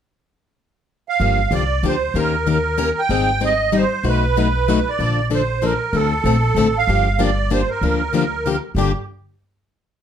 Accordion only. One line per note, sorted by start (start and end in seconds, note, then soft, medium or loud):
1.09 1.54 F5 medium
1.53 1.85 D5 medium
1.87 2.18 C5 medium
2.17 3.00 A#4 medium
2.99 3.44 G5 loud
3.44 3.75 D#5 medium
3.76 4.07 C5 medium
4.08 4.90 B4 medium
4.89 5.29 D5 medium
5.34 5.64 C5 medium
5.65 5.96 A#4 medium
5.95 6.78 A4 medium
6.78 7.22 F5 medium
7.20 7.51 D5 medium
7.53 7.70 C5 medium
7.70 8.59 A#4 medium
8.76 8.93 G4 medium